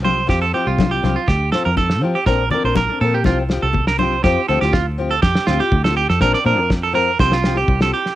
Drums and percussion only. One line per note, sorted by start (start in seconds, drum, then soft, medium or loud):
0.05 high conga medium
0.29 kick medium
0.29 snare medium
0.29 muted conga soft
0.78 kick medium
0.78 snare medium
0.78 muted conga soft
0.78 high conga medium
1.04 snare soft
1.04 high conga medium
1.28 kick medium
1.28 snare medium
1.28 muted conga soft
1.52 snare medium
1.52 muted conga soft
1.77 kick medium
1.77 snare soft
1.77 high conga medium
1.90 snare medium
2.26 kick medium
2.26 snare medium
2.26 muted conga soft
2.51 low conga medium
2.75 kick medium
2.75 snare medium
2.75 muted conga soft
2.75 high conga medium
3.24 kick medium
3.24 snare medium
3.24 muted conga soft
3.24 high conga medium
3.50 snare medium
3.73 kick medium
3.73 low conga medium
3.87 snare medium
3.99 high conga medium
4.24 kick medium
4.24 snare medium
4.62 snare soft
4.73 kick medium
4.73 snare medium
5.23 kick medium
5.23 snare medium
5.35 snare medium
5.47 snare medium
5.72 kick medium
5.85 snare medium
6.10 snare soft
6.21 kick medium
6.21 snare medium
6.34 snare soft
6.70 kick medium
6.70 snare medium
7.19 kick medium
7.19 snare medium
7.32 snare medium
7.44 snare medium
7.68 kick medium
7.81 snare medium
8.06 snare soft